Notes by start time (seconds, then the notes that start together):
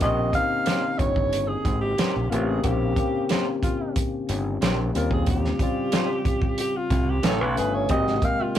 0.00 A#1 C#3 A#3 C4 G4 D#5, kick, closed hi-hat
0.33 C#3 A#3 C4 D#4 F5, kick, closed hi-hat
0.66 A#3 C#4 G4 C5, snare, closed hi-hat
0.99 G1 C#5, kick, closed hi-hat
1.16 kick
1.33 closed hi-hat
1.48 G#4
1.65 G#1, kick, closed hi-hat
1.81 G4
1.98 A#3 C#4 G4 C5, snare, closed hi-hat
2.16 A#1
2.30 A1 C#3 A#3 C4 F4 G4, closed hi-hat
2.48 G#4
2.62 A#1 C#3 A#3 C4 G4, kick, closed hi-hat
2.96 C#3 A#3 C4 G4, kick, closed hi-hat
3.29 A#3 C#4 G4 C5, snare, closed hi-hat
3.63 F4, kick, closed hi-hat
3.96 kick, closed hi-hat
4.29 G1, closed hi-hat
4.61 A#1 A#3 C#4 G4 C5, snare, closed hi-hat
4.93 D#2 C#3 G3 C4 F4 A#4, closed hi-hat
5.11 G#4, kick
5.26 G4, kick, closed hi-hat
5.45 snare
5.59 C#3 G3 C4 F4, kick, closed hi-hat
5.92 G3 C#4 F4 C5, snare, closed hi-hat
6.25 kick, closed hi-hat
6.42 kick
6.58 G4, closed hi-hat
6.77 F4
6.90 C2, kick, closed hi-hat
7.10 G4
7.23 A1 C#3 A3 B3 E4 G#4 A4 C#5, snare, closed hi-hat
7.41 B1 B4
7.56 G1 C#3 A3 B3 G#4, closed hi-hat
7.74 C#5
7.88 G#1 C3 G#3 A#3 G4 D#5, kick, closed hi-hat
8.07 snare
8.22 C3 G#3 A#3 F5 G5, kick, closed hi-hat
8.42 F4
8.55 A#3 D#4, closed hi-hat